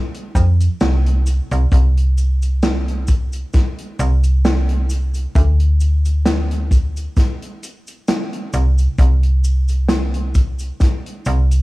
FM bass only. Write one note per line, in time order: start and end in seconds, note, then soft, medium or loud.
0.35 0.69 F2 medium
0.81 1.40 C2 medium
1.51 1.66 C2 loud
1.72 3.44 C2 loud
3.99 5.26 C2 loud
5.35 7.08 D2 loud
8.54 8.87 C2 medium
8.99 10.71 C2 loud
11.26 11.62 C2 loud